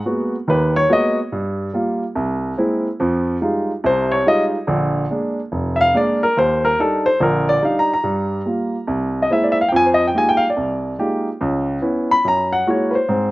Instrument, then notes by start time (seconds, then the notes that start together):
grand piano
0.06 G#3 A#3 B3 F#4
0.48 D#2 D#3 B4
0.76 C#5
0.89 G#3 A#3 B3 F#4 D#5
1.32 G2
1.74 G3 A#3 F4
2.15 C2
2.58 G#3 A#3 C4 E4
3.00 F2 F3
3.41 G3 G#3 D#4 F4
3.84 C2 C3 C5
4.12 C#5
4.26 G3 G#3 D#4 F4 D#5
4.67 A#1 D3
5.10 G#3 A#3 D4
5.52 F1
5.76 E5
5.81 F5
5.94 G#3 A#3 D4 D5
6.23 A#4
6.37 D#2 C5
6.65 A#4
6.79 G3 D4 D#4 A4
7.06 C5
7.20 A#1 D3 A#4
7.49 D5
7.62 G3 D4 D#4 F5
7.79 A#5
7.94 A#5
8.04 G2 G3
8.46 G3 A#3 F4
8.87 C2
9.22 D#5
9.30 G#3 A#3 C4 E4 E5
9.44 D5
9.52 E5
9.61 F5
9.69 F2 F3 G5
9.76 G#5
9.86 C5
9.94 D#5
10.08 G5
10.14 G#3 A#3 D#4 F4 G4 G#5
10.29 G5
10.37 F5
10.50 D5
10.57 C2
10.99 G#3 A#3 D#4 F4 G4
11.41 C#2
11.82 B3 C#4 E4
12.11 B5
12.25 F#2 A#5
12.53 F#5
12.67 G#3 A#3 E4 F#4 C#5
12.91 B4
12.95 C5
13.09 G#2 C4